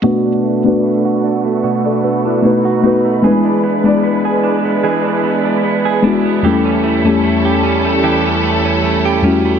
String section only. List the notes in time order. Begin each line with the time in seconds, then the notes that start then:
0.03 A3 D4 F#4 B4
2.43 D#4
3.24 G#3 D4 E4
6.44 E2 G3 C#4 A4